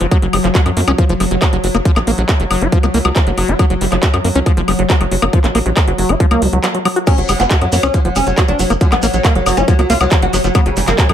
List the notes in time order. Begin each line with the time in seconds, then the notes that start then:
Already playing: F#3
0.01 F#1 F3, closed hi-hat
0.11 F#3, kick, closed hi-hat, high woodblock
0.22 F#1 F#3, closed hi-hat
0.33 F#1 G3, open hi-hat, high woodblock
0.44 F#1 F3, clap, closed hi-hat
0.55 F#4, kick, clap, closed hi-hat
0.66 F#2 F#3, closed hi-hat, high woodblock
0.77 F#2 A#3, open hi-hat
0.88 C#2 C#4, closed hi-hat, high woodblock
0.98 F3, kick, closed hi-hat
1.09 F#1 F3, closed hi-hat
1.20 F#1 G3, open hi-hat, high woodblock
1.31 F#1 F#3, closed hi-hat
1.42 F#4, kick, clap, closed hi-hat, high woodblock
1.53 F#1 F#3, closed hi-hat
1.64 F#1 F#3, open hi-hat
1.74 F#1 A#3, closed hi-hat, high woodblock
1.85 F3, kick, closed hi-hat
1.96 A#1 A#3, clap, closed hi-hat, high woodblock
2.07 A#1 A#3, open hi-hat
2.18 A#1 F#3, closed hi-hat
2.29 F#4, kick, clap, closed hi-hat, high woodblock
2.40 F#1 F#3, closed hi-hat
2.51 F#1 F#3, open hi-hat, high woodblock
2.61 F#1 F#4, closed hi-hat
2.72 F3, kick, closed hi-hat
2.83 C#2 A#3, closed hi-hat, high woodblock
2.94 C#2 A#3, open hi-hat
3.05 C#2 F#3, closed hi-hat, high woodblock
3.16 F3, kick, clap, closed hi-hat
3.27 F#1 F#3, closed hi-hat
3.38 F#1 F#3, open hi-hat, high woodblock
3.48 F#1 F#4, closed hi-hat
3.59 F#3, kick, closed hi-hat, high woodblock
3.70 F#1 F#3, closed hi-hat
3.81 F#1 G3, open hi-hat
3.92 F#1 F3, clap, closed hi-hat, high woodblock
4.03 F#4, kick, clap, closed hi-hat
4.14 F#2 F#3, closed hi-hat, high woodblock
4.24 F#2 A#3, open hi-hat
4.35 C#2 C#4, closed hi-hat
4.46 F3, kick, closed hi-hat, high woodblock
4.57 F#1 F3, closed hi-hat
4.68 F#1 G3, open hi-hat, high woodblock
4.79 F#1 F#3, closed hi-hat
4.90 F#4, kick, clap, closed hi-hat
5.01 F#1 F#3, closed hi-hat, high woodblock
5.11 F#1 F#3, open hi-hat
5.22 F#1 A#3, closed hi-hat, high woodblock
5.33 F3, kick, closed hi-hat
5.44 A#1 A#3, clap, closed hi-hat
5.55 A#1 A#3, open hi-hat, high woodblock
5.66 A#1 F#3, closed hi-hat
5.77 F#4, kick, clap, closed hi-hat, high woodblock
5.88 F#1 F#3, closed hi-hat
5.98 F#1 F#3, open hi-hat
6.09 F#1 F#4, closed hi-hat, high woodblock
6.20 F3, kick, closed hi-hat
6.31 C#2 A#3, closed hi-hat, high woodblock
6.42 C#2 F#3, open hi-hat
6.53 C#2 F#3, closed hi-hat
6.64 F#3, clap, closed hi-hat, high woodblock
6.74 F#3, closed hi-hat
6.85 F#3, open hi-hat, high woodblock
6.96 F#4, closed hi-hat
7.07 F#3 C#4, kick, closed hi-hat, crash, high woodblock, shekere
7.18 F#1 F#3, closed hi-hat
7.29 F#1 F#3 G3, open hi-hat, high woodblock, shekere
7.40 F#1 F3 B3, clap, closed hi-hat, shekere
7.51 F#3 F#4, kick, clap, closed hi-hat, shekere
7.61 F#2 F#3, closed hi-hat, high woodblock
7.72 F#2 F#3 A#3, open hi-hat, shekere
7.83 C#2 C#4, closed hi-hat, high woodblock, shekere
7.94 F3 F#3, kick, closed hi-hat, shekere
8.05 F#1 F3 F#3, closed hi-hat
8.16 F#1 G3 C#4, open hi-hat, high woodblock, shekere
8.27 F#1 F#3, closed hi-hat, shekere
8.37 F#3 F#4, kick, clap, closed hi-hat, high woodblock, shekere
8.48 F#1 F#3 D4, closed hi-hat
8.59 F#1 F#3, open hi-hat, shekere
8.70 F#1 A#3, closed hi-hat, high woodblock, shekere
8.81 F3 F#3, kick, closed hi-hat, shekere
8.92 A#1 A#3 B3, clap, closed hi-hat, high woodblock
9.02 A#1 F#3 A#3, open hi-hat, shekere
9.14 A#1 F#3, closed hi-hat, shekere
9.24 A#3 F#4, kick, clap, closed hi-hat, high woodblock, shekere
9.35 F#1 F#3, closed hi-hat
9.46 F#1 F#3, open hi-hat, high woodblock, shekere
9.57 F#1 C#4 F#4, closed hi-hat, shekere
9.68 F3 F#3, kick, closed hi-hat, shekere
9.79 C#2 F#3 A#3, closed hi-hat, high woodblock
9.90 C#2 A#3 F4, open hi-hat, shekere
10.01 C#2 F#3, closed hi-hat, high woodblock, shekere
10.10 F3 F#3, kick, clap, closed hi-hat, shekere
10.22 F#1 F#3 F#4, closed hi-hat
10.33 F#1 F#3, open hi-hat, high woodblock, shekere
10.44 F#1 F3 F#3, closed hi-hat, shekere
10.55 F#3 B3, kick, closed hi-hat, high woodblock, shekere
10.66 F#1 C#3 F#3, closed hi-hat
10.77 F#1 C#3 G3, open hi-hat, shekere
10.87 F#1 F3 A#3, clap, closed hi-hat, high woodblock, shekere
10.98 C#3 F#4, kick, clap, closed hi-hat, shekere
11.09 F#2 C#3 F#3, closed hi-hat, high woodblock